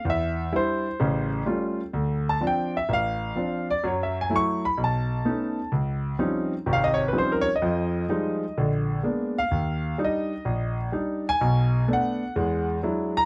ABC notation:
X:1
M:4/4
L:1/16
Q:"Swing" 1/4=127
K:Dphr
V:1 name="Grand piano"
=e4 c6 z6 | z2 a2 g2 =e2 f6 d2 | (3_d2 _f2 _a2 _d'2 _c'2 =a8 | z8 f e _d _c =c B d e- |
e8- e z4 z f2- | f4 e6 z4 _a2- | _a4 ^f6 z4 b2 |]
V:2 name="Grand piano" clef=bass
=E,,4 [G,D=E]2 z2 [A,,,^C,]4 [G,A,^C^E]2 z2 | D,,4 [F,CD]2 z2 A,,,4 [F,CD]2 z2 | [_G,,_G,]4 [G,A,_F]2 z2 =B,,,4 [A,=B,^C^D]2 z2 | _D,,4 [F,G,C_DE]2 z2 [_A,,,C,]4 [F,G,CDE]2 z2 |
[F,,F,]4 [F,G,_A,E]2 z2 [B,,,D,]4 [A,B,_CD]2 z2 | E,,4 [G,DE]2 z2 B,,,4 [G,DE]2 z2 | [=B,,,=B,,]4 [A,=B,D]2 z2 [=E,,^G,]4 [^F,G,D=E]2 z2 |]